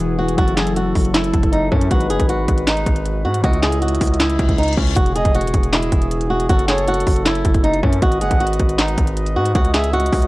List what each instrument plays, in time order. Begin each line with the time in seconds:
Already playing: 808-style bass E1, brass ensemble E3 B3 F#4 G#4, harp E3 C#4, nylon-string guitar E4
0.00 harp B3 F#4 G#4
0.19 nylon-string guitar F#4
0.28 closed hi-hat
0.34 808-style bass F#1, harp F#3 C#4, brass ensemble F#3 C#4 E4 A4, nylon-string guitar F#4, kick, closed hi-hat
0.39 harp E4 A4
0.48 closed hi-hat
0.57 nylon-string guitar G#4, snare, clap, closed hi-hat
0.67 closed hi-hat
0.76 nylon-string guitar F#4, closed hi-hat
0.95 808-style bass F#1, kick, open hi-hat
1.05 closed hi-hat
1.14 nylon-string guitar E4, snare, clap, closed hi-hat
1.24 closed hi-hat
1.34 808-style bass F#1, kick, closed hi-hat
1.43 kick, closed hi-hat
1.52 nylon-string guitar D#4, closed hi-hat
1.72 808-style bass F#2, nylon-string guitar C#4, kick
1.81 closed hi-hat
1.88 808-style bass G#1, harp G#3 D#4, brass ensemble G#3 D#4 F#4 B4, nylon-string guitar F#4, kick, closed hi-hat
1.92 harp F#4 B4
2.01 closed hi-hat
2.10 808-style bass F#1, nylon-string guitar G#4, closed hi-hat
2.20 808-style bass G#1, kick, closed hi-hat
2.29 nylon-string guitar F#4, closed hi-hat
2.48 808-style bass G#1, kick, closed hi-hat
2.58 closed hi-hat
2.67 nylon-string guitar D#4, snare, clap, closed hi-hat
2.77 closed hi-hat
2.86 808-style bass G#1, kick, closed hi-hat
2.96 closed hi-hat
3.06 closed hi-hat
3.25 808-style bass G#2, nylon-string guitar F#4
3.34 closed hi-hat
3.41 808-style bass C#2, harp C#3 C#4, brass ensemble C#3 C#4 E4 D#5, nylon-string guitar F#4, kick, closed hi-hat
3.45 harp E4 D#5
3.53 closed hi-hat
3.63 nylon-string guitar G#4, snare, clap, closed hi-hat
3.72 closed hi-hat
3.82 nylon-string guitar F#4, closed hi-hat
3.88 closed hi-hat
3.95 closed hi-hat
4.01 808-style bass C#2, kick, closed hi-hat, open hi-hat
4.07 closed hi-hat
4.14 closed hi-hat
4.20 nylon-string guitar E4, snare, clap, closed hi-hat, reverse cymbal
4.30 closed hi-hat
4.39 808-style bass C#2, kick, closed hi-hat
4.49 kick, closed hi-hat
4.58 nylon-string guitar D#4, closed hi-hat
4.63 closed hi-hat
4.68 closed hi-hat
4.73 closed hi-hat
4.77 808-style bass C#2, nylon-string guitar C#4, kick
4.87 closed hi-hat
4.96 808-style bass E1, brass ensemble E3 B3 F#4 G#4, nylon-string guitar F#4, kick, closed hi-hat
5.06 closed hi-hat
5.16 nylon-string guitar G#4, soft synth lead D#5, closed hi-hat
5.25 808-style bass E1, kick, closed hi-hat
5.35 nylon-string guitar F#4, closed hi-hat
5.41 closed hi-hat
5.47 closed hi-hat
5.54 808-style bass E1, kick, closed hi-hat
5.63 closed hi-hat
5.73 nylon-string guitar E4, snare, clap, closed hi-hat
5.82 closed hi-hat
5.92 808-style bass E1, kick, closed hi-hat
6.02 closed hi-hat
6.11 closed hi-hat
6.21 closed hi-hat
6.30 nylon-string guitar F#4
6.40 closed hi-hat
6.49 808-style bass F#1, brass ensemble F#3 C#4 E4 A4, nylon-string guitar F#4, kick, closed hi-hat
6.59 closed hi-hat
6.68 nylon-string guitar G#4, soft synth lead C#5, snare, clap, closed hi-hat
6.78 closed hi-hat
6.88 nylon-string guitar F#4, closed hi-hat
6.94 closed hi-hat
7.00 closed hi-hat
7.07 808-style bass F#1, kick, open hi-hat
7.16 closed hi-hat
7.26 nylon-string guitar E4, snare, clap, closed hi-hat
7.35 closed hi-hat
7.45 808-style bass F#1, kick, closed hi-hat
7.54 kick, closed hi-hat
7.64 nylon-string guitar D#4, closed hi-hat
7.74 closed hi-hat
7.83 808-style bass F#2, nylon-string guitar C#4, kick
7.93 closed hi-hat
8.02 808-style bass G#1, brass ensemble G#3 F#4 B4 D#5, nylon-string guitar F#4, kick, closed hi-hat
8.12 closed hi-hat
8.21 808-style bass F#1, nylon-string guitar G#4, soft synth lead F#5, closed hi-hat
8.31 808-style bass G#1, kick, closed hi-hat
8.40 nylon-string guitar F#4, closed hi-hat
8.47 closed hi-hat
8.53 closed hi-hat
8.60 808-style bass G#1, kick, closed hi-hat
8.69 closed hi-hat
8.79 nylon-string guitar D#4, snare, clap, closed hi-hat
8.88 closed hi-hat
8.98 808-style bass G#1, kick, closed hi-hat
9.07 closed hi-hat
9.17 closed hi-hat
9.26 closed hi-hat
9.36 808-style bass G#2, nylon-string guitar F#4
9.46 closed hi-hat
9.55 808-style bass C#2, brass ensemble C#3 C#4 E4, nylon-string guitar F#4, kick, closed hi-hat
9.65 closed hi-hat
9.74 nylon-string guitar G#4, soft synth lead E5, snare, clap, closed hi-hat
9.84 closed hi-hat
9.93 nylon-string guitar F#4, closed hi-hat
10.00 closed hi-hat
10.06 closed hi-hat
10.13 808-style bass C#2, kick, open hi-hat
10.22 closed hi-hat